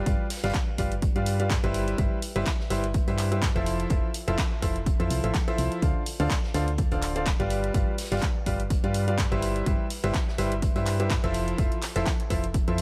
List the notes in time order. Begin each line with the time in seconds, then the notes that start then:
0.06 G1 G3 F4 G4 B4 D5 F5, kick, closed hi-hat
0.30 snare, closed hi-hat, open hi-hat
0.37 snare, closed hi-hat
0.43 G1 G3 F4 G4 B4 D5 F5, snare, closed hi-hat
0.49 snare, closed hi-hat
0.54 kick, snare, clap, closed hi-hat
0.78 G1 G3 F4 G4 B4 D5 F5, kick, closed hi-hat, open hi-hat
0.92 closed hi-hat
1.02 kick, closed hi-hat
1.16 G2 G3 F4 G4 B4 D5 F5, closed hi-hat
1.26 closed hi-hat, open hi-hat
1.40 G3 F4 G4 B4 D5 F5, closed hi-hat
1.50 kick, snare, clap, closed hi-hat
1.64 G1 G3 E4 G4 B4 C5 E5, closed hi-hat
1.74 closed hi-hat, open hi-hat
1.88 closed hi-hat
1.98 G1 G3 E4 G4 B4 C5 E5, kick, closed hi-hat
2.22 open hi-hat
2.36 G1 G3 E4 G4 B4 C5 E5, closed hi-hat
2.46 kick, snare, clap, closed hi-hat
2.59 snare
2.70 G1 G3 E4 G4 B4 C5 E5, snare, closed hi-hat, open hi-hat
2.84 closed hi-hat
2.94 kick, closed hi-hat
3.07 G2 G3 E4 G4 B4 C5 E5, closed hi-hat
3.18 clap, closed hi-hat, open hi-hat
3.32 G3 E4 G4 B4 C5 E5, closed hi-hat
3.42 kick, snare, clap, closed hi-hat
3.56 F1 F3 E4 F4 A4 C5 E5, closed hi-hat
3.66 closed hi-hat, open hi-hat
3.80 closed hi-hat
3.90 F1 F3 E4 F4 A4 C5 E5, kick, closed hi-hat
4.14 closed hi-hat, open hi-hat
4.28 F1 F3 E4 F4 A4 C5 E5, closed hi-hat
4.38 kick, snare, clap, closed hi-hat
4.62 F1 F3 E4 F4 A4 C5 E5, kick, closed hi-hat, open hi-hat
4.76 closed hi-hat
4.86 kick, closed hi-hat
5.00 F2 F3 E4 F4 A4 C5 E5, closed hi-hat
5.10 C2, closed hi-hat, open hi-hat
5.24 A1 F3 E4 F4 A4 C5 E5, closed hi-hat
5.34 kick, snare, clap, closed hi-hat
5.48 F3 E4 F4 A4 C5 E5, closed hi-hat
5.58 C2, closed hi-hat, open hi-hat
5.72 closed hi-hat
5.82 D2 D3 F4 A4 C5 D5 F5, kick, closed hi-hat
6.06 open hi-hat
6.20 D2 D3 F4 A4 C5 D5 F5, closed hi-hat
6.30 kick, snare, clap, closed hi-hat
6.43 snare
6.54 D2 D3 F4 A4 C5 D5 F5, snare, closed hi-hat, open hi-hat
6.68 closed hi-hat
6.78 kick, closed hi-hat
6.91 D1 D3 F4 A4 C5 D5 F5, closed hi-hat
7.02 clap, closed hi-hat, open hi-hat
7.16 D3 F4 A4 C5 D5 F5, closed hi-hat
7.26 kick, snare, clap, closed hi-hat
7.40 G1 G3 F4 G4 B4 D5 F5, closed hi-hat
7.50 closed hi-hat, open hi-hat
7.64 closed hi-hat
7.74 G1 G3 F4 G4 B4 D5 F5, kick, closed hi-hat
7.98 snare, closed hi-hat, open hi-hat
8.05 snare, closed hi-hat
8.11 G1 G3 F4 G4 B4 D5 F5, snare, closed hi-hat
8.17 snare, closed hi-hat
8.22 kick, snare, clap, closed hi-hat
8.46 G1 G3 F4 G4 B4 D5 F5, kick, closed hi-hat, open hi-hat
8.60 closed hi-hat
8.70 kick, closed hi-hat
8.84 G2 G3 F4 G4 B4 D5 F5, closed hi-hat
8.94 closed hi-hat, open hi-hat
9.08 G3 F4 G4 B4 D5 F5, closed hi-hat
9.17 kick, snare, clap, closed hi-hat
9.32 G1 G3 E4 G4 B4 C5 E5, closed hi-hat
9.42 closed hi-hat, open hi-hat
9.56 closed hi-hat
9.66 G1 G3 E4 G4 B4 C5 E5, kick, closed hi-hat
9.90 open hi-hat
10.04 G1 G3 E4 G4 B4 C5 E5, closed hi-hat
10.14 kick, snare, clap, closed hi-hat
10.28 snare
10.38 G1 G3 E4 G4 B4 C5 E5, snare, closed hi-hat, open hi-hat
10.52 closed hi-hat
10.62 kick, closed hi-hat
10.76 G2 G3 E4 G4 B4 C5 E5, closed hi-hat
10.86 clap, closed hi-hat, open hi-hat
11.00 G3 E4 G4 B4 C5 E5, closed hi-hat
11.10 kick, snare, clap, closed hi-hat
11.24 F1 F3 E4 F4 A4 C5 E5, closed hi-hat
11.34 closed hi-hat, open hi-hat
11.48 closed hi-hat
11.58 F1 F3 E4 F4 A4 C5 E5, kick, closed hi-hat
11.72 closed hi-hat
11.82 snare, clap, closed hi-hat, open hi-hat
11.96 F1 F3 E4 F4 A4 C5 E5, snare, closed hi-hat
12.06 kick, snare, clap, closed hi-hat
12.20 closed hi-hat
12.30 F1 F3 E4 F4 A4 C5 E5, kick, closed hi-hat, open hi-hat
12.44 closed hi-hat
12.54 kick, closed hi-hat
12.68 F2 F3 E4 F4 A4 C5 E5, closed hi-hat
12.78 open hi-hat